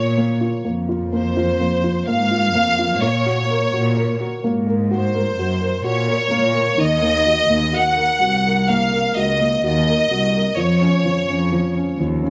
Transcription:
Already playing: A#2 A#3 F4 C#5
0.18 A#3
0.41 F4
0.65 F2 A#3
0.89 F4
1.13 A#3 C5
1.37 F4
1.60 A#3
1.84 F4
2.08 G#2 A#3 F5
2.31 F4
2.55 F2 A#3
2.79 F4
3.02 A#2 A#3 C#5
3.26 F#4
3.50 A#4
3.73 A#2 F#4
3.97 A#4
4.21 F#4
4.44 G#2 A#3
4.67 A#4
4.91 F#4 C5
5.15 A#4
5.36 F#2 F#4
5.61 A#4
5.84 A#2 F#4 C#5
6.08 A#4
6.31 A#2 A#3
6.54 A#4
6.78 D#2 D#3 D#5
7.02 A#3
7.26 F#4
7.49 D#2 A#3
7.73 F#4 F#5
7.97 A#4
8.20 C2 F#4
8.45 A#4
8.69 A#3 F5
8.93 A#4
9.16 C#2 F#4 D#5
9.40 A#3
9.62 D#2 F#4 D#5
9.87 A#4
10.10 C2 F#4
10.34 A#4
10.56 F2 F3 C#5
10.81 C#4
11.05 F3
11.27 F2 C#4
11.52 F3
11.76 C#4
11.99 D#2 F3
12.23 C#4

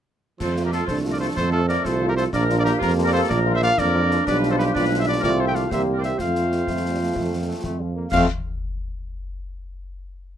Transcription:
0.40 F2 F3 A3 F4 A4 C5, concert bass drum, snare, crash
0.56 F3 A3 F4, snare
0.65 G4 A#4
0.72 F3 A3 F4 A4, snare
0.87 C2 D4 A4 C5, concert bass drum, snare
1.05 F3 A3 F4
1.11 A#4 D5
1.20 F3 A3 F4 A4 C5
1.36 F2 C4 A4 C5, concert bass drum, snare
1.52 F3 A3 F4 A4
1.68 F3 A3 F4 A#4 D5, snare
1.84 C2 F4 A4 C5, concert bass drum, snare
2.02 F3 A3 F4
2.08 G4 A#4
2.17 F3 A3 F4 A4 C5, snare
2.32 A#1 F3 A#3 D4 A#4 D5, concert bass drum, snare
2.49 F3 A#3 F4, snare
2.58 A#4 D5
2.64 F3 A#3 F4 G4 A#4, snare
2.79 F2 F4 G4 A#4, concert bass drum, snare
2.98 F3 A#3 F4
3.04 A#4 D5
3.12 F3 A#3 F4 A4 C5
3.29 A#1 F4 A#4 D5, concert bass drum, snare
3.45 F3 A#3 F4
3.54 C5 E5
3.61 F3 A#3 F4 D5 F5, snare
3.78 F2 D4 A#4 D5, concert bass drum, snare
3.94 F3 A#3 F4
4.11 F3 A#3 F4, snare
4.26 B1 F3 G3 D4 F4 B4 D5, concert bass drum, snare, crash
4.43 snare
4.51 A4 C5
4.58 G4 B4, snare
4.73 B1 G3 D4 F4 B4 D5, concert bass drum, snare
4.98 C5 E5
5.05 B4 D5
5.20 A3 C4 F4 A#4, concert bass drum, snare
5.24 C2 A3 D5
5.37 A4 C5
5.46 E5 G5
5.53 D5 F5, snare
5.70 C2 G3 A#3 C4 G4 C5 E5, concert bass drum, snare
5.93 A#4
5.98 C5 D5
6.03 E5, snare
6.17 F2 F3 A3 C4 F4 C5 F5, concert bass drum, snare
6.35 snare
6.52 snare
6.66 F2 A3, concert bass drum, snare
6.91 G3
7.00 F3
7.15 F2 A3, concert bass drum, snare
7.41 A#3
7.46 A3
7.64 F2 A3, concert bass drum, snare
7.80 F3
7.96 A#3
8.11 F2 F3 A3 C4 F4 F5, concert bass drum, snare, crash

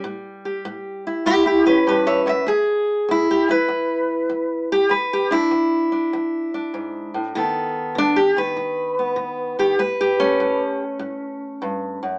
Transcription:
Already playing: G3
0.04 A2
0.45 G4
0.65 A2
1.07 E4
1.26 A2 E4 G4
1.46 E4 G4
1.66 C#4 G4 B4
1.87 G2 G4 B4
2.07 C#5 E5
2.26 F#2 C#5 E5
2.47 E2 G#4
3.09 E2 E4
3.31 G4
3.49 E4 B4
3.68 E2
4.29 E2
4.72 G4
4.89 E2 B4
5.13 G4
5.31 D4 E4
5.51 E2
5.92 D4
6.13 E2
6.54 D4
6.74 G#2
7.14 A2
7.35 B2 D#3 B3 A4
7.95 B2 D4
8.16 G4
8.36 D#3 B4
8.57 B2
8.99 B3
9.16 B2
9.59 D#3 G4
9.79 A2 B4
10.01 G4
10.20 A3 C#4
10.40 A2
10.99 A2
11.62 G2
12.03 F#2

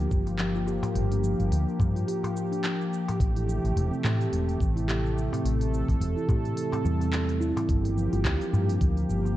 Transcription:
Already playing: F3 A#3 G4
0.11 G1, kick, cabasa
0.27 open hi-hat, darbuka tek, cabasa
0.39 F3, clap, open hi-hat, cabasa
0.55 F4, cabasa
0.67 G4, darbuka tek, cabasa
0.83 open hi-hat, darbuka ka, darbuka tek, darbuka dum, cabasa
0.95 G1, open hi-hat, cabasa
1.11 D4, open hi-hat, cabasa
1.24 F3, cabasa
1.40 G1, open hi-hat, cabasa
1.51 D2, open hi-hat, cabasa
1.69 cabasa
1.80 G2 F3, kick, darbuka ka, darbuka dum, cabasa
1.96 F4, open hi-hat, cabasa
2.08 G4, open hi-hat, cabasa
2.23 open hi-hat, darbuka ka, darbuka tek, darbuka dum, cabasa
2.37 cabasa
2.52 D4, open hi-hat, darbuka tek, cabasa
2.63 F3, clap, open hi-hat, cabasa
2.81 cabasa
2.93 cabasa
3.08 open hi-hat, darbuka tek, darbuka dum, cabasa
3.20 A1 C3 E3 A3, kick, open hi-hat, cabasa
3.35 E4, open hi-hat, cabasa
3.48 G4, cabasa
3.64 A1, open hi-hat, darbuka tek, cabasa
3.76 E1, open hi-hat, cabasa
3.91 C4, cabasa
4.04 A2 E3, clap, darbuka ka, darbuka dum, cabasa
4.21 open hi-hat, cabasa
4.32 E1, open hi-hat, cabasa
4.49 open hi-hat, cabasa
4.60 A1 E3, kick, cabasa
4.76 E4, open hi-hat, darbuka tek, cabasa
4.88 G4, clap, open hi-hat, cabasa
5.06 cabasa
5.17 darbuka tek, cabasa
5.32 C4, open hi-hat, darbuka ka, darbuka tek, darbuka dum, cabasa
5.44 A1 E3 A4, open hi-hat, cabasa
5.61 open hi-hat, cabasa
5.74 cabasa
5.88 A1, kick, open hi-hat, darbuka tek, cabasa
6.00 E1 E3, open hi-hat, cabasa
6.16 E4, cabasa
6.28 A2 G4, kick, darbuka ka, darbuka dum, cabasa
6.45 open hi-hat, cabasa
6.57 open hi-hat, cabasa
6.72 C4, open hi-hat, darbuka ka, darbuka tek, darbuka dum, cabasa
6.85 E2 G3, cabasa
7.00 C4, open hi-hat, darbuka tek, cabasa
7.13 clap, open hi-hat, cabasa
7.29 open hi-hat, cabasa
7.41 E4, cabasa
7.56 E3, open hi-hat, darbuka tek, darbuka dum, cabasa
7.69 G1 F3 A#3 G4, kick, open hi-hat, cabasa
7.85 open hi-hat, cabasa
7.97 F3, cabasa
8.13 G1 F4, open hi-hat, darbuka tek, cabasa
8.25 D2 G4, kick, clap, open hi-hat, cabasa
8.41 open hi-hat, cabasa
8.53 G2, darbuka dum, cabasa
8.69 D4, open hi-hat, cabasa
8.81 D2 F3, kick, open hi-hat, cabasa
8.97 open hi-hat, cabasa
9.09 G1, cabasa
9.25 darbuka tek, cabasa

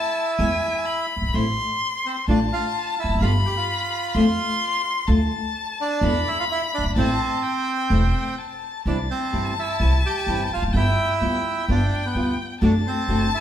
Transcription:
Already playing: E4 E5 A5
0.38 E2 B2 E3 G#3 B3 E4 G#5
0.85 B5
1.16 F#1
1.22 G1
1.28 G#1
1.33 A1 E3 A3 C4 E4 C6
2.06 C4 C5
2.28 A1 D3 A3 D4 F4 D5 A5
2.53 F4 F5
3.00 E4 E5
3.04 E1
3.09 F1
3.15 F#1
3.21 G1 B2 D3 G3 B3 F4 G4 F5 B5
3.46 G4 G5
3.57 F4 F5
4.14 F2 C3 F3 A3 C4 F4 C6
5.08 D2 D3 A3 D4 F4 A5
5.81 D4 D5
6.01 E2 B2 D3 G#3 B3 E4 B5
6.27 E4 E5
6.40 F4 F5
6.51 E4 E5
6.74 F#1 D4 D5
6.84 G1
6.90 G#1
6.96 A1 E3 A3 C4 E4 C5 A5
7.37 A5
7.43 G5
7.90 E1 E3 A3 C4 E4
8.38 A5
8.85 C2 C3 E3 G3 C4 D4 E4 D5 A5
9.10 C4 C5
9.32 G1 C3 E3 G3 C4 E4
9.59 E4 E5
9.80 C2 C3 E3 G3 C4 E4
10.06 G4 G5
10.27 G1 C3 E3 G3 C4 E4
10.46 G5
10.53 E1 F4 F5
10.62 F1
10.68 F#1
10.73 G1 G3 B3 E4 F4 E5 G5
11.21 D2 G3 B3 F4 G5
11.68 G1 G3 B3 D4 F4 D5
12.05 B3 B4
12.15 D2 G3 B3 F4
12.61 F#1 C3 F#3 A3 D4 F#4 D5 A5
12.87 C4 C5
13.08 F#1 C3 F#3 A3 D4 F#4
13.35 E4 E5

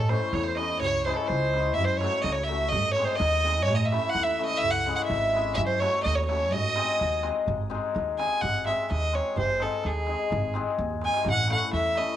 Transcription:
Already playing: A2 A4
0.00 A4
0.09 A3 C#4 E4 A4 C5, darbuka tek
0.33 E2 C#5, darbuka tek
0.43 C5
0.48 C5
0.55 A3 C#4 E4 A4 D#5, darbuka tek
0.69 darbuka tek
0.80 C#2 C#5, darbuka dum
1.02 G#3 C#4 C5, darbuka tek
1.07 E4 G#4 C5
1.14 A4
1.26 C#2 C5, darbuka tek
1.54 G#3 C#4 E4 G#4, darbuka tek
1.66 darbuka tek
1.74 E5, darbuka dum
1.78 F#2
1.86 C5
1.97 C#5, darbuka tek
2.02 A3 C#4 F#4 A4
2.22 C#2 D#5, darbuka tek
2.33 C#5
2.44 E5
2.48 A3 C#4 F#4 A4 E5, darbuka tek
2.62 darbuka tek
2.69 G#2 D#5, darbuka dum
2.85 darbuka tek
2.93 C#5, darbuka tek
2.98 G#3 C4 D#4 G#4
3.05 C5
3.09 darbuka tek
3.15 D#5
3.20 D#2, darbuka tek
3.33 darbuka tek
3.44 G#3 C4 D#4 G#4, darbuka tek
3.62 C#5
3.68 A2, darbuka dum
3.75 D#5
3.85 E5
3.92 A3 C#4 E4 A4, darbuka tek
4.10 F#5
4.15 D#2, darbuka tek
4.23 E5
4.39 A3 C#4 E4 A4, darbuka tek
4.45 D#5
4.51 darbuka tek
4.58 C#2 E5
4.64 darbuka dum
4.70 F#5
4.86 G#3 C#4 E4 G#4, darbuka tek
4.95 F#5
5.04 E5
5.08 G#1 E5, darbuka tek
5.33 G#3 C#4 E4 G#4, darbuka tek
5.46 darbuka tek
5.54 F#2 E5, darbuka dum
5.67 C5
5.80 A3 C#4 F#4 A4 C#5, darbuka tek
6.03 D#2 D#5, darbuka tek
6.16 C#5
6.25 A3 C#4 F#4 C#5, darbuka tek
6.30 A4
6.41 darbuka tek
6.51 G#2 D#5, darbuka dum
6.64 darbuka tek
6.76 G#3 C4 D#4 G#4, darbuka tek
7.00 D#2, darbuka tek
7.11 darbuka tek
7.23 G#3 C4 D#4 G#4, darbuka tek
7.36 darbuka tek
7.46 G#1, darbuka dum
7.59 darbuka tek
7.70 G#3 C4 D#4 G#4, darbuka tek
7.95 D#2, darbuka tek
8.18 G#3 C4 D#4 G#4 G#5, darbuka tek
8.41 G#1 F#5, darbuka dum
8.54 darbuka tek
8.66 G#3 C4 D#4 G#4 E5, darbuka tek
8.90 D#2 D#5, darbuka tek
9.13 G#3 C4 D#4 G#4 C#5, darbuka tek
9.36 G#1 C5, darbuka dum
9.48 darbuka tek
9.60 G#3 C4 D#4 G#4 A4, darbuka tek
9.84 D#2 G#4, darbuka tek
10.07 G#3 C4 D#4 G#4, darbuka tek
10.30 G#1, darbuka dum
10.43 darbuka tek
10.54 G#3 C4 D#4 G#4, darbuka tek
10.78 D#2, darbuka dum
10.90 darbuka dum
11.02 G#3 C4 D#4 G#4 G#5, darbuka tek
11.14 darbuka tek
11.25 A1, darbuka dum
11.31 F#5
11.37 darbuka tek
11.48 A3 C#4 E4, darbuka tek
11.52 A4 F#5
11.72 E2 E5, darbuka tek
11.95 A3 C#4 E4 A4 D#5, darbuka tek

